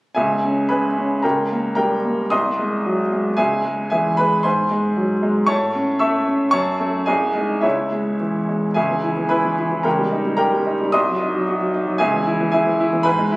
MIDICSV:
0, 0, Header, 1, 2, 480
1, 0, Start_track
1, 0, Key_signature, 4, "minor"
1, 0, Tempo, 537634
1, 148, Time_signature, 2, 2, 24, 8
1, 2546, Tempo, 526778
1, 5906, Tempo, 556070
1, 7826, Tempo, 542005
1, 9746, Tempo, 528634
1, 11956, End_track
2, 0, Start_track
2, 0, Title_t, "Grand piano"
2, 0, Program_c, 0, 0
2, 130, Note_on_c, 0, 80, 67
2, 143, Note_on_c, 0, 68, 48
2, 143, Note_on_c, 0, 76, 53
2, 152, Note_on_c, 0, 37, 63
2, 321, Control_c, 0, 64, 127
2, 394, Note_on_c, 0, 61, 41
2, 594, Note_off_c, 0, 68, 0
2, 594, Note_off_c, 0, 76, 0
2, 610, Note_off_c, 0, 80, 0
2, 614, Note_on_c, 0, 83, 67
2, 623, Note_on_c, 0, 71, 48
2, 623, Note_on_c, 0, 80, 46
2, 634, Note_on_c, 0, 56, 43
2, 776, Note_off_c, 0, 61, 0
2, 872, Note_on_c, 0, 61, 42
2, 1014, Note_off_c, 0, 56, 0
2, 1069, Note_off_c, 0, 71, 0
2, 1069, Note_off_c, 0, 80, 0
2, 1080, Note_off_c, 0, 37, 0
2, 1094, Note_on_c, 0, 82, 58
2, 1098, Note_off_c, 0, 83, 0
2, 1105, Note_on_c, 0, 79, 46
2, 1106, Note_on_c, 0, 70, 45
2, 1108, Note_off_c, 0, 61, 0
2, 1112, Note_on_c, 0, 37, 59
2, 1122, Control_c, 0, 64, 0
2, 1276, Control_c, 0, 64, 127
2, 1353, Note_on_c, 0, 58, 45
2, 1547, Note_off_c, 0, 70, 0
2, 1547, Note_off_c, 0, 79, 0
2, 1551, Note_off_c, 0, 82, 0
2, 1565, Note_on_c, 0, 82, 64
2, 1576, Note_on_c, 0, 70, 50
2, 1577, Note_on_c, 0, 79, 52
2, 1585, Note_on_c, 0, 55, 45
2, 1731, Note_off_c, 0, 58, 0
2, 1826, Note_on_c, 0, 58, 42
2, 1975, Note_off_c, 0, 55, 0
2, 2033, Note_off_c, 0, 70, 0
2, 2033, Note_off_c, 0, 79, 0
2, 2044, Note_off_c, 0, 37, 0
2, 2056, Note_on_c, 0, 87, 84
2, 2062, Note_off_c, 0, 82, 0
2, 2066, Note_on_c, 0, 75, 56
2, 2066, Note_on_c, 0, 84, 61
2, 2071, Note_off_c, 0, 58, 0
2, 2072, Note_on_c, 0, 36, 59
2, 2087, Control_c, 0, 64, 0
2, 2223, Control_c, 0, 64, 127
2, 2315, Note_on_c, 0, 56, 45
2, 2553, Note_on_c, 0, 54, 48
2, 2695, Note_off_c, 0, 56, 0
2, 2793, Note_on_c, 0, 56, 49
2, 2937, Note_off_c, 0, 54, 0
2, 2991, Note_off_c, 0, 75, 0
2, 2991, Note_off_c, 0, 84, 0
2, 3002, Note_off_c, 0, 36, 0
2, 3015, Note_on_c, 0, 80, 69
2, 3023, Note_off_c, 0, 87, 0
2, 3023, Note_on_c, 0, 68, 53
2, 3023, Note_on_c, 0, 76, 55
2, 3032, Note_off_c, 0, 56, 0
2, 3032, Note_on_c, 0, 37, 61
2, 3049, Control_c, 0, 64, 0
2, 3209, Control_c, 0, 64, 127
2, 3275, Note_on_c, 0, 56, 50
2, 3478, Note_off_c, 0, 68, 0
2, 3478, Note_off_c, 0, 76, 0
2, 3488, Note_off_c, 0, 80, 0
2, 3502, Note_on_c, 0, 80, 67
2, 3513, Note_on_c, 0, 76, 50
2, 3514, Note_on_c, 0, 68, 47
2, 3523, Note_on_c, 0, 52, 54
2, 3663, Note_off_c, 0, 56, 0
2, 3739, Note_off_c, 0, 76, 0
2, 3740, Note_off_c, 0, 68, 0
2, 3748, Note_on_c, 0, 83, 74
2, 3751, Note_off_c, 0, 80, 0
2, 3759, Note_on_c, 0, 71, 58
2, 3765, Note_on_c, 0, 56, 49
2, 3906, Note_off_c, 0, 52, 0
2, 3970, Note_off_c, 0, 37, 0
2, 3982, Note_off_c, 0, 71, 0
2, 3984, Note_on_c, 0, 84, 75
2, 3991, Note_on_c, 0, 72, 49
2, 3993, Note_off_c, 0, 83, 0
2, 3993, Note_on_c, 0, 80, 59
2, 4001, Note_off_c, 0, 56, 0
2, 4003, Note_on_c, 0, 44, 61
2, 4013, Control_c, 0, 64, 0
2, 4186, Control_c, 0, 64, 127
2, 4238, Note_on_c, 0, 56, 50
2, 4474, Note_on_c, 0, 54, 51
2, 4615, Note_off_c, 0, 56, 0
2, 4711, Note_on_c, 0, 56, 57
2, 4855, Note_off_c, 0, 54, 0
2, 4909, Note_off_c, 0, 72, 0
2, 4911, Note_off_c, 0, 80, 0
2, 4923, Note_off_c, 0, 44, 0
2, 4927, Note_on_c, 0, 85, 89
2, 4939, Note_on_c, 0, 73, 66
2, 4939, Note_on_c, 0, 81, 69
2, 4943, Note_off_c, 0, 84, 0
2, 4947, Note_on_c, 0, 45, 69
2, 4950, Note_off_c, 0, 56, 0
2, 4965, Control_c, 0, 64, 0
2, 5129, Control_c, 0, 64, 127
2, 5190, Note_on_c, 0, 61, 60
2, 5389, Note_off_c, 0, 73, 0
2, 5389, Note_off_c, 0, 81, 0
2, 5403, Note_off_c, 0, 85, 0
2, 5409, Note_on_c, 0, 88, 75
2, 5416, Note_on_c, 0, 85, 59
2, 5419, Note_on_c, 0, 76, 62
2, 5428, Note_on_c, 0, 57, 60
2, 5571, Note_off_c, 0, 61, 0
2, 5644, Note_off_c, 0, 85, 0
2, 5645, Note_off_c, 0, 76, 0
2, 5657, Note_off_c, 0, 88, 0
2, 5666, Note_on_c, 0, 61, 55
2, 5812, Note_off_c, 0, 57, 0
2, 5879, Note_off_c, 0, 45, 0
2, 5880, Note_on_c, 0, 85, 102
2, 5894, Note_on_c, 0, 73, 72
2, 5894, Note_on_c, 0, 81, 68
2, 5901, Note_on_c, 0, 42, 71
2, 5908, Note_off_c, 0, 61, 0
2, 5925, Control_c, 0, 64, 0
2, 6077, Control_c, 0, 64, 127
2, 6133, Note_on_c, 0, 57, 50
2, 6137, Note_on_c, 0, 61, 57
2, 6335, Note_off_c, 0, 73, 0
2, 6335, Note_off_c, 0, 81, 0
2, 6347, Note_off_c, 0, 57, 0
2, 6350, Note_off_c, 0, 61, 0
2, 6354, Note_on_c, 0, 80, 83
2, 6357, Note_off_c, 0, 42, 0
2, 6361, Note_off_c, 0, 85, 0
2, 6363, Note_on_c, 0, 75, 59
2, 6364, Note_on_c, 0, 68, 62
2, 6372, Note_on_c, 0, 36, 72
2, 6391, Control_c, 0, 64, 0
2, 6551, Control_c, 0, 64, 127
2, 6608, Note_on_c, 0, 56, 49
2, 6612, Note_on_c, 0, 63, 50
2, 6816, Note_off_c, 0, 75, 0
2, 6817, Note_off_c, 0, 68, 0
2, 6829, Note_off_c, 0, 56, 0
2, 6832, Note_off_c, 0, 63, 0
2, 6832, Note_on_c, 0, 76, 65
2, 6841, Note_off_c, 0, 36, 0
2, 6843, Note_on_c, 0, 64, 46
2, 6843, Note_on_c, 0, 73, 51
2, 6847, Note_off_c, 0, 80, 0
2, 6851, Note_on_c, 0, 37, 59
2, 6874, Control_c, 0, 64, 0
2, 7057, Control_c, 0, 64, 127
2, 7099, Note_on_c, 0, 56, 50
2, 7304, Note_off_c, 0, 64, 0
2, 7304, Note_off_c, 0, 73, 0
2, 7334, Note_off_c, 0, 76, 0
2, 7340, Note_on_c, 0, 52, 47
2, 7490, Note_off_c, 0, 56, 0
2, 7589, Note_on_c, 0, 56, 46
2, 7731, Note_off_c, 0, 52, 0
2, 7796, Note_off_c, 0, 37, 0
2, 7809, Note_on_c, 0, 80, 69
2, 7820, Note_on_c, 0, 76, 53
2, 7821, Note_on_c, 0, 68, 54
2, 7828, Note_off_c, 0, 56, 0
2, 7828, Note_on_c, 0, 37, 61
2, 7842, Control_c, 0, 64, 0
2, 7948, Note_on_c, 0, 52, 45
2, 8006, Control_c, 0, 64, 127
2, 8067, Note_on_c, 0, 64, 41
2, 8141, Note_off_c, 0, 52, 0
2, 8186, Note_on_c, 0, 52, 48
2, 8261, Note_off_c, 0, 64, 0
2, 8271, Note_off_c, 0, 76, 0
2, 8272, Note_off_c, 0, 68, 0
2, 8286, Note_off_c, 0, 80, 0
2, 8291, Note_on_c, 0, 83, 69
2, 8298, Note_on_c, 0, 71, 61
2, 8299, Note_on_c, 0, 80, 53
2, 8309, Note_on_c, 0, 64, 49
2, 8379, Note_off_c, 0, 52, 0
2, 8430, Note_on_c, 0, 52, 46
2, 8500, Note_off_c, 0, 64, 0
2, 8554, Note_on_c, 0, 64, 49
2, 8620, Note_off_c, 0, 52, 0
2, 8670, Note_on_c, 0, 52, 46
2, 8742, Note_off_c, 0, 64, 0
2, 8747, Note_off_c, 0, 71, 0
2, 8748, Note_off_c, 0, 80, 0
2, 8757, Note_off_c, 0, 37, 0
2, 8773, Note_on_c, 0, 82, 66
2, 8777, Note_off_c, 0, 83, 0
2, 8783, Note_on_c, 0, 70, 51
2, 8784, Note_on_c, 0, 79, 45
2, 8787, Note_off_c, 0, 52, 0
2, 8792, Note_on_c, 0, 37, 62
2, 8805, Control_c, 0, 64, 0
2, 8910, Note_on_c, 0, 55, 50
2, 8938, Control_c, 0, 64, 127
2, 9029, Note_on_c, 0, 63, 49
2, 9097, Note_off_c, 0, 55, 0
2, 9146, Note_on_c, 0, 55, 50
2, 9216, Note_off_c, 0, 63, 0
2, 9226, Note_off_c, 0, 70, 0
2, 9227, Note_off_c, 0, 79, 0
2, 9233, Note_off_c, 0, 82, 0
2, 9246, Note_on_c, 0, 82, 69
2, 9254, Note_on_c, 0, 70, 55
2, 9256, Note_on_c, 0, 79, 52
2, 9265, Note_on_c, 0, 67, 51
2, 9335, Note_off_c, 0, 55, 0
2, 9387, Note_on_c, 0, 55, 49
2, 9457, Note_off_c, 0, 67, 0
2, 9511, Note_on_c, 0, 63, 48
2, 9581, Note_off_c, 0, 55, 0
2, 9640, Note_on_c, 0, 55, 52
2, 9704, Note_off_c, 0, 63, 0
2, 9712, Note_off_c, 0, 70, 0
2, 9713, Note_off_c, 0, 79, 0
2, 9723, Note_off_c, 0, 37, 0
2, 9739, Note_on_c, 0, 87, 97
2, 9742, Note_off_c, 0, 82, 0
2, 9750, Note_on_c, 0, 75, 63
2, 9753, Note_on_c, 0, 84, 71
2, 9756, Note_off_c, 0, 55, 0
2, 9760, Note_on_c, 0, 36, 68
2, 9767, Control_c, 0, 64, 0
2, 9887, Note_on_c, 0, 54, 50
2, 9905, Control_c, 0, 64, 127
2, 10010, Note_on_c, 0, 63, 51
2, 10072, Note_off_c, 0, 54, 0
2, 10121, Note_on_c, 0, 54, 53
2, 10194, Note_off_c, 0, 63, 0
2, 10246, Note_on_c, 0, 66, 58
2, 10308, Note_off_c, 0, 54, 0
2, 10362, Note_on_c, 0, 54, 52
2, 10431, Note_off_c, 0, 66, 0
2, 10481, Note_on_c, 0, 63, 60
2, 10550, Note_off_c, 0, 54, 0
2, 10596, Note_on_c, 0, 54, 52
2, 10670, Note_off_c, 0, 63, 0
2, 10678, Note_off_c, 0, 75, 0
2, 10680, Note_off_c, 0, 84, 0
2, 10691, Note_off_c, 0, 36, 0
2, 10700, Note_on_c, 0, 80, 85
2, 10709, Note_off_c, 0, 87, 0
2, 10712, Note_on_c, 0, 68, 69
2, 10713, Note_on_c, 0, 76, 61
2, 10715, Note_off_c, 0, 54, 0
2, 10723, Note_on_c, 0, 37, 74
2, 10733, Control_c, 0, 64, 0
2, 10839, Note_on_c, 0, 52, 53
2, 10892, Control_c, 0, 64, 127
2, 10961, Note_on_c, 0, 64, 62
2, 11030, Note_off_c, 0, 52, 0
2, 11084, Note_on_c, 0, 52, 58
2, 11151, Note_off_c, 0, 64, 0
2, 11161, Note_off_c, 0, 68, 0
2, 11162, Note_off_c, 0, 76, 0
2, 11171, Note_off_c, 0, 80, 0
2, 11185, Note_on_c, 0, 80, 71
2, 11197, Note_on_c, 0, 68, 52
2, 11198, Note_on_c, 0, 76, 53
2, 11206, Note_on_c, 0, 64, 58
2, 11272, Note_off_c, 0, 52, 0
2, 11322, Note_on_c, 0, 52, 58
2, 11392, Note_off_c, 0, 64, 0
2, 11418, Note_off_c, 0, 68, 0
2, 11419, Note_off_c, 0, 76, 0
2, 11429, Note_off_c, 0, 80, 0
2, 11445, Note_on_c, 0, 64, 67
2, 11509, Note_off_c, 0, 52, 0
2, 11559, Note_on_c, 0, 52, 60
2, 11629, Note_off_c, 0, 64, 0
2, 11647, Note_off_c, 0, 37, 0
2, 11653, Note_on_c, 0, 83, 97
2, 11664, Note_on_c, 0, 80, 69
2, 11667, Note_on_c, 0, 71, 74
2, 11673, Note_on_c, 0, 44, 76
2, 11674, Note_off_c, 0, 52, 0
2, 11686, Control_c, 0, 64, 0
2, 11789, Note_on_c, 0, 56, 66
2, 11857, Control_c, 0, 64, 127
2, 11913, Note_on_c, 0, 64, 66
2, 11956, Note_off_c, 0, 44, 0
2, 11956, Note_off_c, 0, 56, 0
2, 11956, Note_off_c, 0, 64, 0
2, 11956, Note_off_c, 0, 71, 0
2, 11956, Note_off_c, 0, 80, 0
2, 11956, Note_off_c, 0, 83, 0
2, 11956, End_track
0, 0, End_of_file